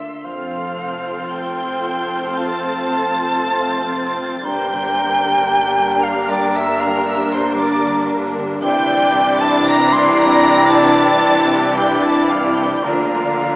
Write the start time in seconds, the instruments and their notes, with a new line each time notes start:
Already playing: harp D3 D4 F4 A#4, flute E5, violin section C6 E6
0.00 harp A#3
0.23 double bass section F1, cello section F2, harp F2, french horn section A3 C4, viola section C4 F4, clarinet C4, violin section A4 C5 F6, cor anglais C5, flute F5
0.51 harp C3
0.77 harp C4
1.04 harp F4
1.30 harp C5, flute G5, violin section G6
1.57 harp F4
1.84 harp F5
2.10 harp C6
2.36 harp F5, flute A5, violin section A6
2.63 harp C5
2.90 harp F4
3.15 harp C3
3.42 harp C4
3.68 harp C3
3.93 harp C4
4.20 harp C3
4.44 double bass section G1, harp G2, cello section G2, viola section G3 D4, french horn section A#3 D4, clarinet D4, violin section A#4 G6, cor anglais A#4, flute G5
4.72 harp D3
4.99 harp A#3
5.25 harp D4
5.49 harp G4, violin section A#4
5.77 harp A#4
6.03 harp D5, flute F5, violin section F6
6.30 flute D5, harp G5, violin section D6
6.56 harp D5, flute E5, violin section E6
6.80 harp G4, flute F5, violin section F6
7.07 harp D4, flute E5, violin section E6
7.34 harp D3, flute C5, violin section C6
7.60 harp A#3, flute D5, violin section D6
7.87 harp D3
8.12 harp A#3
8.37 harp D3
8.62 double bass section C2, harp C3, cello section C3, viola section E3 D4, french horn section D4 E4, clarinet E4, violin section G4 D5 G6, cor anglais D5, flute G5
8.89 harp G3
9.15 harp D4
9.41 harp E4, flute A5, violin section A6
9.66 harp G4, flute A#5, violin section A#6
9.92 flute C6, violin section C7
10.18 harp E5, flute A#5, violin section A#6
10.44 harp G5
10.70 harp E5, flute A5, violin section A6
10.96 harp G4
11.22 harp E4
11.49 harp G3
11.75 harp D4, french horn section D4 E4, clarinet E4, cor anglais D5, flute G5, violin section G6
12.03 harp G3, flute A5, violin section A6
12.29 harp D4, flute F5, violin section F6
12.56 harp G3, flute G5, violin section G6
12.83 double bass section D2, cello section D3, harp D3, viola section F3 D4, french horn section A#3 F4, clarinet F4, violin section A#4 D5 F6, cor anglais A#4, flute F5
13.12 harp A#3
13.40 harp D4